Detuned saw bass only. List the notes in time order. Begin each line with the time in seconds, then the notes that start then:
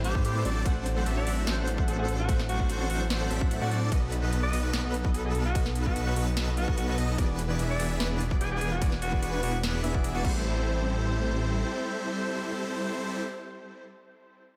Already playing: A1
0.15 A2
0.45 A1
0.65 A1
1.06 A1
1.27 A1
1.47 A1
2.08 A1
2.69 A1
2.90 A1
3.31 A1
3.51 A1
3.62 A2
3.92 B1
4.33 B1
4.53 B1
4.73 B1
5.35 B1
5.96 B1
6.16 B1
6.68 B1
6.98 B1
7.18 E1
7.59 E1
7.79 E1
8.00 E1
8.61 E1
9.22 E1
9.43 E1
9.84 E1
10.04 E1
10.15 E1
10.25 A1